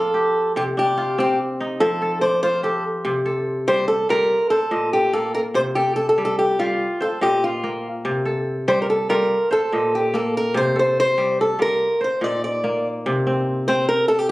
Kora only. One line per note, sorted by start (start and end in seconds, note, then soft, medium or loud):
0.00 0.60 F3 medium
0.00 0.48 C4 medium
0.00 0.97 F4 medium
0.00 0.84 A4 medium
0.00 0.84 D5 medium
0.14 1.55 G4 medium
0.56 1.85 C3 medium
0.77 1.66 D4 medium
0.97 2.43 F4 medium
1.18 2.98 C4 medium
1.60 2.28 D#4 medium
1.81 3.10 F3 medium
2.02 3.25 A4 medium
2.22 3.33 D5 medium
2.43 3.94 F4 medium
2.63 4.05 G4 medium
3.05 4.35 C3 medium
3.26 4.57 A4 medium
3.68 4.08 G3 medium
4.09 4.35 G3 medium
4.09 5.60 F4 medium
4.51 5.69 C5 medium
4.71 5.60 A#2 medium
4.71 5.78 D#5 medium
5.13 5.82 A#3 medium
5.54 6.85 C3 medium
5.76 7.08 A4 medium
6.18 6.58 G3 medium
6.59 6.85 G3 medium
6.59 8.11 F4 medium
7.01 8.19 C5 medium
7.21 8.10 A#2 medium
7.21 8.28 D#5 medium
7.64 8.31 A#3 medium
8.05 9.35 C3 medium
8.25 9.57 A4 medium
8.68 9.08 G3 medium
9.09 9.35 G3 medium
9.09 10.61 F4 medium
9.51 10.69 C5 medium
9.72 10.60 A#2 medium
9.72 10.79 D#5 medium
10.14 10.82 A#3 medium
10.54 11.85 C3 medium
10.76 12.07 A4 medium
11.18 11.58 G3 medium
11.59 11.85 G3 medium
11.59 13.10 F4 medium
12.01 13.19 C5 medium
12.21 13.11 A#2 medium
12.21 13.84 D#4 medium
12.64 14.31 A#3 medium
13.06 14.31 C3 medium
13.27 13.68 C4 medium
13.69 14.31 C4 medium